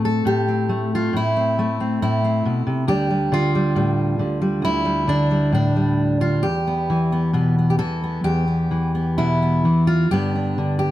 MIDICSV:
0, 0, Header, 1, 2, 480
1, 0, Start_track
1, 0, Tempo, 882353
1, 1573, Time_signature, 4, 2, 24, 8
1, 3018, Tempo, 904977
1, 4458, Tempo, 925926
1, 5831, End_track
2, 0, Start_track
2, 0, Title_t, "Steel-string acoustic guitar"
2, 0, Program_c, 0, 25
2, 0, Note_on_c, 0, 45, 68
2, 0, Note_on_c, 0, 57, 62
2, 0, Note_on_c, 0, 60, 51
2, 27, Note_on_c, 0, 69, 89
2, 130, Note_off_c, 0, 45, 0
2, 137, Note_on_c, 0, 45, 60
2, 145, Note_on_c, 0, 67, 90
2, 256, Note_off_c, 0, 60, 0
2, 263, Note_on_c, 0, 60, 41
2, 374, Note_off_c, 0, 57, 0
2, 377, Note_on_c, 0, 57, 61
2, 504, Note_off_c, 0, 67, 0
2, 516, Note_on_c, 0, 65, 76
2, 608, Note_off_c, 0, 45, 0
2, 615, Note_on_c, 0, 45, 67
2, 625, Note_off_c, 0, 69, 0
2, 628, Note_off_c, 0, 65, 0
2, 634, Note_on_c, 0, 64, 90
2, 736, Note_off_c, 0, 60, 0
2, 742, Note_on_c, 0, 60, 41
2, 857, Note_off_c, 0, 57, 0
2, 863, Note_on_c, 0, 57, 61
2, 974, Note_off_c, 0, 60, 0
2, 981, Note_on_c, 0, 60, 46
2, 1093, Note_off_c, 0, 64, 0
2, 1094, Note_off_c, 0, 45, 0
2, 1100, Note_on_c, 0, 45, 57
2, 1101, Note_on_c, 0, 64, 82
2, 1214, Note_off_c, 0, 60, 0
2, 1221, Note_on_c, 0, 60, 48
2, 1333, Note_off_c, 0, 45, 0
2, 1335, Note_on_c, 0, 47, 64
2, 1448, Note_off_c, 0, 47, 0
2, 1451, Note_on_c, 0, 48, 60
2, 1546, Note_off_c, 0, 57, 0
2, 1547, Note_off_c, 0, 60, 0
2, 1564, Note_on_c, 0, 38, 73
2, 1566, Note_off_c, 0, 64, 0
2, 1568, Note_on_c, 0, 50, 52
2, 1568, Note_on_c, 0, 67, 88
2, 1571, Note_off_c, 0, 48, 0
2, 1571, Note_on_c, 0, 55, 52
2, 1575, Note_on_c, 0, 62, 49
2, 1683, Note_off_c, 0, 55, 0
2, 1689, Note_on_c, 0, 55, 45
2, 1799, Note_off_c, 0, 50, 0
2, 1805, Note_on_c, 0, 50, 66
2, 1812, Note_off_c, 0, 62, 0
2, 1814, Note_on_c, 0, 65, 100
2, 1925, Note_off_c, 0, 55, 0
2, 1931, Note_on_c, 0, 55, 48
2, 2040, Note_off_c, 0, 55, 0
2, 2042, Note_on_c, 0, 45, 60
2, 2046, Note_on_c, 0, 55, 52
2, 2275, Note_off_c, 0, 50, 0
2, 2281, Note_on_c, 0, 50, 63
2, 2284, Note_off_c, 0, 45, 0
2, 2284, Note_off_c, 0, 67, 0
2, 2395, Note_off_c, 0, 55, 0
2, 2402, Note_on_c, 0, 55, 50
2, 2507, Note_off_c, 0, 38, 0
2, 2513, Note_on_c, 0, 38, 70
2, 2527, Note_on_c, 0, 64, 98
2, 2632, Note_off_c, 0, 55, 0
2, 2639, Note_on_c, 0, 55, 46
2, 2755, Note_off_c, 0, 50, 0
2, 2762, Note_on_c, 0, 50, 62
2, 2767, Note_off_c, 0, 65, 0
2, 2769, Note_on_c, 0, 62, 84
2, 2881, Note_off_c, 0, 55, 0
2, 2888, Note_on_c, 0, 55, 43
2, 3005, Note_on_c, 0, 45, 64
2, 3010, Note_off_c, 0, 62, 0
2, 3017, Note_on_c, 0, 62, 82
2, 3125, Note_off_c, 0, 55, 0
2, 3131, Note_on_c, 0, 55, 41
2, 3256, Note_off_c, 0, 64, 0
2, 3360, Note_off_c, 0, 38, 0
2, 3366, Note_on_c, 0, 38, 55
2, 3367, Note_off_c, 0, 62, 0
2, 3370, Note_on_c, 0, 65, 84
2, 3484, Note_on_c, 0, 67, 95
2, 3486, Note_off_c, 0, 38, 0
2, 3488, Note_off_c, 0, 45, 0
2, 3488, Note_on_c, 0, 40, 73
2, 3489, Note_off_c, 0, 50, 0
2, 3491, Note_off_c, 0, 65, 0
2, 3615, Note_on_c, 0, 59, 46
2, 3734, Note_on_c, 0, 52, 61
2, 3851, Note_off_c, 0, 59, 0
2, 3853, Note_on_c, 0, 59, 47
2, 3965, Note_on_c, 0, 47, 64
2, 3966, Note_off_c, 0, 59, 0
2, 3968, Note_on_c, 0, 59, 49
2, 4096, Note_off_c, 0, 59, 0
2, 4098, Note_on_c, 0, 59, 41
2, 4154, Note_off_c, 0, 67, 0
2, 4160, Note_on_c, 0, 67, 64
2, 4200, Note_off_c, 0, 52, 0
2, 4204, Note_off_c, 0, 67, 0
2, 4206, Note_on_c, 0, 52, 57
2, 4206, Note_on_c, 0, 69, 89
2, 4210, Note_off_c, 0, 47, 0
2, 4335, Note_off_c, 0, 59, 0
2, 4337, Note_on_c, 0, 59, 41
2, 4440, Note_off_c, 0, 40, 0
2, 4445, Note_off_c, 0, 69, 0
2, 4446, Note_on_c, 0, 40, 66
2, 4447, Note_on_c, 0, 67, 93
2, 4562, Note_off_c, 0, 59, 0
2, 4568, Note_on_c, 0, 59, 37
2, 4684, Note_off_c, 0, 52, 0
2, 4690, Note_on_c, 0, 52, 58
2, 4807, Note_off_c, 0, 59, 0
2, 4813, Note_on_c, 0, 59, 43
2, 4931, Note_off_c, 0, 67, 0
2, 4933, Note_on_c, 0, 64, 84
2, 4935, Note_on_c, 0, 47, 58
2, 5054, Note_off_c, 0, 59, 0
2, 5060, Note_on_c, 0, 59, 45
2, 5171, Note_off_c, 0, 52, 0
2, 5177, Note_on_c, 0, 52, 59
2, 5180, Note_off_c, 0, 47, 0
2, 5290, Note_off_c, 0, 59, 0
2, 5292, Note_on_c, 0, 65, 88
2, 5389, Note_off_c, 0, 40, 0
2, 5391, Note_off_c, 0, 52, 0
2, 5414, Note_off_c, 0, 64, 0
2, 5416, Note_on_c, 0, 67, 93
2, 5417, Note_off_c, 0, 65, 0
2, 5419, Note_off_c, 0, 55, 0
2, 5421, Note_on_c, 0, 43, 69
2, 5423, Note_on_c, 0, 50, 48
2, 5427, Note_on_c, 0, 59, 48
2, 5429, Note_on_c, 0, 62, 49
2, 5537, Note_off_c, 0, 62, 0
2, 5543, Note_on_c, 0, 62, 38
2, 5653, Note_off_c, 0, 50, 0
2, 5659, Note_on_c, 0, 50, 60
2, 5761, Note_off_c, 0, 67, 0
2, 5768, Note_on_c, 0, 67, 85
2, 5831, Note_off_c, 0, 43, 0
2, 5831, Note_off_c, 0, 50, 0
2, 5831, Note_off_c, 0, 59, 0
2, 5831, Note_off_c, 0, 62, 0
2, 5831, Note_off_c, 0, 67, 0
2, 5831, End_track
0, 0, End_of_file